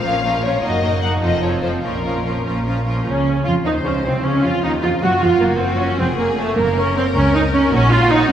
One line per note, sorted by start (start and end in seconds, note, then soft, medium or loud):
0.00 0.43 F5 medium
0.04 0.56 A#1 soft
0.04 0.56 A#2 soft
0.04 0.23 F3 soft
0.04 0.23 C#4 soft
0.04 0.23 F4 soft
0.04 0.23 A#4 soft
0.24 0.42 F3 soft
0.24 0.42 C#4 soft
0.24 0.42 F4 soft
0.24 0.43 A#4 soft
0.43 0.63 F3 soft
0.43 0.63 C#4 soft
0.43 0.63 F4 soft
0.43 0.62 A#4 soft
0.43 0.63 C#5 medium
0.63 1.16 F#1 soft
0.63 1.15 F#2 soft
0.63 0.82 A#3 soft
0.63 0.82 D#4 soft
0.63 0.81 F#4 soft
0.63 0.81 A#4 soft
0.63 1.02 D#5 medium
0.82 1.02 A#3 soft
0.82 1.02 D#4 soft
0.82 1.01 F#4 soft
0.82 1.01 A#4 soft
1.02 1.22 A#3 soft
1.02 1.22 D#4 soft
1.02 1.22 F#4 soft
1.02 1.22 A#4 soft
1.02 1.11 F#5 medium
1.21 1.76 F1 soft
1.21 1.76 F2 soft
1.21 1.41 F3 soft
1.21 1.41 C4 soft
1.21 1.40 F4 soft
1.21 1.40 A4 soft
1.21 1.42 D#5 medium
1.42 1.61 F3 soft
1.42 1.61 C4 soft
1.42 1.61 F4 soft
1.42 1.61 A4 soft
1.42 1.62 C#5 soft
1.62 1.82 F3 soft
1.62 1.83 C4 soft
1.62 1.81 F4 soft
1.62 1.82 A4 soft
1.62 1.70 C5 soft
1.82 2.38 A#1 soft
1.82 2.38 A#2 soft
1.82 2.03 F3 soft
1.82 2.03 C#4 soft
1.82 2.03 F4 soft
1.82 2.03 A#4 soft
1.82 2.44 A#4 soft
2.04 2.23 F3 soft
2.04 2.23 C#4 soft
2.04 2.23 F4 soft
2.04 2.23 A#4 soft
2.24 2.43 F3 soft
2.24 2.43 C#4 soft
2.24 2.44 F4 soft
2.24 2.44 A#4 soft
2.44 3.00 A#1 soft
2.44 2.99 A#2 soft
2.44 2.64 F3 soft
2.44 2.64 C#4 soft
2.44 2.65 F4 soft
2.44 2.64 A#4 soft
2.65 2.85 F3 soft
2.65 2.84 C#4 soft
2.65 2.85 F4 soft
2.65 2.85 A#4 soft
2.85 3.06 F3 soft
2.85 3.05 C#4 soft
2.85 3.06 F4 soft
2.85 3.06 A#4 soft
3.06 3.43 C#2 soft
3.06 3.43 C#3 medium
3.06 3.43 C#4 medium
3.45 3.54 F2 medium
3.45 3.54 F3 medium
3.45 3.53 F4 medium
3.45 3.54 F4 medium
3.65 3.85 D#2 medium
3.65 3.85 D#3 medium
3.65 3.73 D#4 medium
3.65 4.21 C5 soft
3.85 4.05 C#2 medium
3.85 4.05 C#3 medium
3.85 3.93 C#4 soft
3.85 3.93 C#4 medium
4.05 4.25 C2 medium
4.05 4.25 C3 medium
4.05 4.24 C4 medium
4.05 4.14 C4 medium
4.24 4.44 C#2 medium
4.24 4.44 C#3 medium
4.24 4.44 C#4 medium
4.24 5.40 F4 soft
4.44 4.52 F2 medium
4.44 4.52 F3 medium
4.44 4.64 F4 medium
4.44 4.63 F4 medium
4.64 4.83 D#2 medium
4.64 4.83 D#3 medium
4.64 4.71 D#4 medium
4.83 4.91 F2 medium
4.83 4.91 F3 medium
4.83 4.91 F4 medium
5.02 5.11 F#2 medium
5.02 5.11 F#3 medium
5.02 5.22 F#4 medium
5.02 5.11 F#4 medium
5.21 5.30 F2 medium
5.21 5.30 F3 medium
5.21 5.41 F4 medium
5.41 5.88 F#1 medium
5.41 5.87 F#2 medium
5.41 5.61 A#3 medium
5.41 6.00 F#4 medium
5.61 5.80 C4 medium
5.80 5.99 C#4 medium
5.80 5.95 C#5 soft
5.99 6.46 F1 medium
5.99 6.46 F2 medium
5.99 6.07 C4 medium
5.99 6.58 G#4 medium
6.18 6.38 A#3 medium
6.38 6.57 A3 medium
6.38 6.53 C#5 medium
6.57 7.04 F#1 medium
6.57 7.04 F#2 medium
6.57 6.77 A#3 medium
6.57 7.71 A#4 medium
6.77 6.97 C#4 medium
6.97 7.04 C4 medium
6.97 7.11 C#5 medium
7.16 7.61 C#2 medium
7.16 7.34 C#4 medium
7.35 7.42 D#4 medium
7.54 7.71 C#4 medium
7.54 7.68 C#5 medium
7.72 8.18 A#1 medium
7.72 8.18 A#2 medium
7.72 7.91 C#4 medium
7.72 8.32 F#4 medium
7.92 8.11 F4 medium
8.11 8.30 D#4 medium
8.11 8.25 C#5 medium